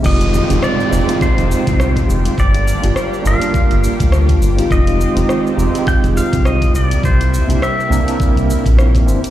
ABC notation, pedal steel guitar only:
X:1
M:4/4
L:1/8
Q:"Swing 16ths" 1/4=103
K:Fdor
V:1 name="Pedal steel guitar"
e2 d2 c4 | d3 f4 z | e4 g f e d | c2 =e3 z3 |]